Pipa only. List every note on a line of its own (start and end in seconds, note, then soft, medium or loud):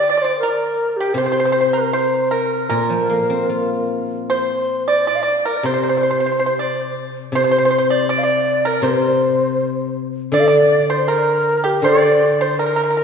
0.04 0.08 D5 soft
0.10 0.16 D5 medium
0.17 0.23 D5 soft
0.24 0.32 D5 medium
0.43 0.96 A#4 medium
1.00 1.17 G4 medium
1.18 1.25 C5 medium
1.26 1.31 C5 soft
1.32 1.39 C5 medium
1.40 1.44 C5 medium
1.45 1.51 C5 medium
1.52 1.60 C5 medium
1.61 1.69 C5 medium
1.73 1.92 A#4 medium
1.93 2.30 C5 medium
2.31 2.68 A#4 medium
2.70 3.86 A#4 medium
4.30 4.84 C5 medium
4.88 5.06 D5 medium
5.07 5.21 D5 medium
5.23 5.45 D5 medium
5.45 5.64 A#4 medium
5.65 5.73 C5 medium
5.74 5.80 C5 soft
5.83 5.88 C5 medium
5.89 5.96 C5 soft
5.97 6.02 C5 soft
6.03 6.10 C5 soft
6.11 6.17 C5 soft
6.20 6.25 C5 soft
6.26 6.31 C5 soft
6.32 6.38 C5 soft
6.39 6.45 C5 soft
6.46 6.53 C5 soft
6.59 6.95 D5 medium
7.35 7.42 C5 medium
7.44 7.50 C5 medium
7.51 7.57 C5 medium
7.58 7.64 C5 medium
7.65 7.69 C5 medium
7.71 7.77 C5 medium
7.78 7.86 C5 medium
7.90 8.08 D5 medium
8.09 8.22 D5 medium
8.23 8.63 D5 medium
8.65 8.83 A#4 medium
8.83 9.93 C5 medium
10.34 10.47 D5 medium
10.48 10.88 D5 medium
10.90 11.08 C5 medium
11.08 11.62 A#4 medium
11.64 11.83 G4 medium
11.84 12.37 D5 medium
12.41 12.59 C5 medium
12.59 12.65 A#4 medium
12.66 12.74 A#4 soft
12.76 12.82 A#4 medium
12.84 12.89 A#4 soft
12.90 12.96 A#4 medium
12.97 13.03 A#4 soft